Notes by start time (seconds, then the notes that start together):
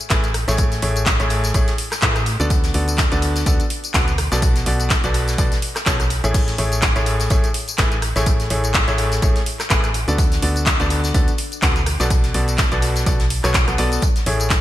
0.01 tambourine
0.10 A1 A2 A3 E4 G#4 B4, kick, snare, clap, closed hi-hat, tambourine
0.24 closed hi-hat, tambourine
0.34 cross-stick, closed hi-hat, open hi-hat
0.48 A1 A2 A3 E4 G#4 C#5, snare, closed hi-hat, tambourine
0.57 kick, closed hi-hat, tambourine
0.72 snare, closed hi-hat, tambourine
0.82 A1 A2 A3 E4 G#4 C#5, closed hi-hat, open hi-hat
0.96 closed hi-hat, tambourine
1.06 kick, snare, clap, closed hi-hat, tambourine
1.20 A1 A2 A3 E4 G#4 C#5, closed hi-hat, tambourine
1.30 closed hi-hat, open hi-hat
1.44 snare, closed hi-hat, tambourine
1.54 A1 A2 A3 E4 G#4 C#5, kick, closed hi-hat, tambourine
1.67 snare, closed hi-hat, tambourine
1.78 closed hi-hat, open hi-hat
1.92 cross-stick, snare, clap, closed hi-hat, tambourine
2.02 A2 A3 E4 G#4 B4, kick, snare, clap, closed hi-hat, tambourine
2.16 cross-stick, closed hi-hat, tambourine
2.26 closed hi-hat, open hi-hat
2.40 D2 D3 B3 F#4 A4 D5, closed hi-hat, tambourine
2.50 kick, closed hi-hat, tambourine
2.64 snare, closed hi-hat, tambourine
2.74 D2 D3 B3 F#4 A4 D5, closed hi-hat, open hi-hat
2.88 closed hi-hat, tambourine
2.98 kick, snare, clap, closed hi-hat, tambourine
3.12 D2 D3 B3 F#4 A4 D5, closed hi-hat, tambourine
3.22 closed hi-hat, open hi-hat
3.36 snare, closed hi-hat, tambourine
3.46 D2 D3 B3 F#4 A4 D5, kick, closed hi-hat, tambourine
3.60 closed hi-hat, tambourine
3.70 closed hi-hat, open hi-hat
3.84 closed hi-hat, tambourine
3.94 D2 B2 B3 F#4 A4 B4, kick, snare, clap, closed hi-hat, tambourine
4.08 closed hi-hat, tambourine
4.18 cross-stick, closed hi-hat, open hi-hat
4.32 B1 B2 B3 F#4 A4 D5, snare, closed hi-hat, tambourine
4.42 kick, closed hi-hat, tambourine
4.55 snare, closed hi-hat, tambourine
4.66 B1 B2 B3 F#4 A4 D5, closed hi-hat, open hi-hat
4.80 closed hi-hat, tambourine
4.90 kick, snare, clap, closed hi-hat, tambourine
5.03 B1 B2 B3 F#4 A4 D5, closed hi-hat, tambourine
5.14 closed hi-hat, open hi-hat
5.28 snare, closed hi-hat, tambourine
5.38 B1 B2 B3 F#4 A4 D5, kick, closed hi-hat, tambourine
5.52 snare, closed hi-hat, tambourine
5.62 closed hi-hat, open hi-hat
5.76 cross-stick, snare, clap, closed hi-hat, tambourine
5.86 B1 B2 B3 F#4 A4 C#5, kick, snare, clap, closed hi-hat, tambourine
6.00 cross-stick, closed hi-hat, tambourine
6.10 closed hi-hat, open hi-hat
6.24 A1 A2 A3 E4 G#4 C#5, closed hi-hat, tambourine
6.34 kick, closed hi-hat, crash, tambourine
6.47 snare, closed hi-hat, tambourine
6.58 A1 A2 A3 E4 G#4 C#5, closed hi-hat, open hi-hat
6.72 closed hi-hat, tambourine
6.82 kick, snare, clap, closed hi-hat, tambourine
6.96 A1 A2 A3 E4 G#4 C#5, closed hi-hat, tambourine
7.06 closed hi-hat, open hi-hat
7.20 snare, closed hi-hat, tambourine
7.30 A1 A2 A3 E4 G#4 C#5, kick, closed hi-hat, tambourine
7.44 closed hi-hat, tambourine
7.54 closed hi-hat, open hi-hat
7.68 closed hi-hat, tambourine
7.78 A1 A2 A3 E4 G#4 B4, kick, snare, clap, closed hi-hat, tambourine
7.92 closed hi-hat, tambourine
8.02 cross-stick, closed hi-hat, open hi-hat
8.16 A1 A2 A3 E4 G#4 C#5, snare, closed hi-hat, tambourine
8.26 kick, closed hi-hat, tambourine
8.40 snare, closed hi-hat, tambourine
8.50 A1 A2 A3 E4 G#4 C#5, closed hi-hat, open hi-hat
8.64 closed hi-hat, tambourine
8.74 kick, snare, clap, closed hi-hat, tambourine
8.88 A1 A2 A3 E4 G#4 C#5, closed hi-hat, tambourine
8.98 closed hi-hat, open hi-hat
9.12 snare, closed hi-hat, tambourine
9.22 A1 A2 A3 E4 G#4 C#5, kick, closed hi-hat, tambourine
9.36 snare, closed hi-hat, tambourine
9.46 closed hi-hat, open hi-hat
9.59 cross-stick, snare, clap, closed hi-hat, tambourine
9.70 A1 A2 A3 E4 G#4 B4, kick, snare, clap, closed hi-hat, tambourine
9.84 cross-stick, closed hi-hat, tambourine
9.94 closed hi-hat, open hi-hat
10.08 D2 D3 B3 F#4 A4 D5, closed hi-hat, tambourine
10.18 kick, closed hi-hat, tambourine
10.32 snare, closed hi-hat, tambourine
10.42 D2 D3 B3 F#4 A4 D5, closed hi-hat, open hi-hat
10.56 closed hi-hat, tambourine
10.66 kick, snare, clap, closed hi-hat, tambourine
10.80 D2 D3 B3 F#4 A4 D5, closed hi-hat, tambourine
10.90 closed hi-hat, open hi-hat
11.04 snare, closed hi-hat, tambourine
11.14 D2 D3 B3 F#4 A4 D5, kick, closed hi-hat, tambourine
11.28 closed hi-hat, tambourine
11.38 closed hi-hat, open hi-hat
11.52 closed hi-hat, tambourine
11.62 D2 B2 B3 F#4 A4 B4, kick, snare, clap, closed hi-hat, tambourine
11.76 closed hi-hat, tambourine
11.86 cross-stick, closed hi-hat, open hi-hat
12.00 B1 B2 B3 F#4 A4 D5, snare, closed hi-hat, tambourine
12.10 kick, closed hi-hat, tambourine
12.24 snare, closed hi-hat, tambourine
12.34 B1 B2 B3 F#4 A4 D5, closed hi-hat, open hi-hat
12.48 closed hi-hat, tambourine
12.58 kick, snare, clap, closed hi-hat, tambourine
12.72 B1 B2 B3 F#4 A4 D5, closed hi-hat, tambourine
12.82 closed hi-hat, open hi-hat
12.96 snare, closed hi-hat, tambourine
13.06 B1 B2 B3 F#4 A4 D5, kick, closed hi-hat, tambourine
13.20 snare, closed hi-hat, tambourine
13.30 closed hi-hat, open hi-hat
13.44 B1 B2 B3 F#4 A4 C#5, cross-stick, snare, clap, closed hi-hat, tambourine
13.54 kick, snare, clap, closed hi-hat, tambourine
13.68 B1 B2 B3 F#4 A4 F#5, cross-stick, closed hi-hat, tambourine
13.78 B1 B3 F#4 A4 D5, closed hi-hat, open hi-hat
13.92 closed hi-hat, tambourine
14.02 kick, closed hi-hat, tambourine
14.16 snare, closed hi-hat, tambourine
14.26 A1 A2 A3 E4 G#4 C#5, closed hi-hat, open hi-hat
14.40 closed hi-hat, tambourine
14.50 kick, snare, clap, closed hi-hat, tambourine